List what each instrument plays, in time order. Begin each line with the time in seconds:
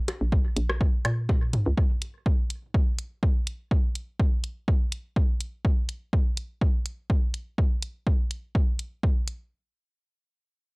0.08 closed hi-hat, percussion blips
0.21 fm bass A#1
0.32 kick
0.57 fm bass A#1, closed hi-hat
0.70 cross-stick, percussion blips
0.81 kick
1.05 fm bass A#2, cross-stick, closed hi-hat, claves
1.29 kick, percussion blips
1.53 closed hi-hat, mid tom
1.66 fm bass C#2
1.77 kick
2.02 closed hi-hat
2.26 kick
2.50 closed hi-hat
2.74 kick
2.98 closed hi-hat
3.23 kick
3.47 closed hi-hat
3.71 kick
3.95 closed hi-hat
4.20 kick
4.44 closed hi-hat
4.68 kick
4.92 closed hi-hat
5.16 kick
5.40 closed hi-hat
5.65 kick
5.89 closed hi-hat
6.13 kick
6.37 closed hi-hat
6.61 kick
6.86 closed hi-hat
7.10 kick
7.34 closed hi-hat
7.58 kick
7.82 closed hi-hat
8.07 kick
8.31 closed hi-hat
8.55 kick
8.79 closed hi-hat
9.03 kick
9.28 closed hi-hat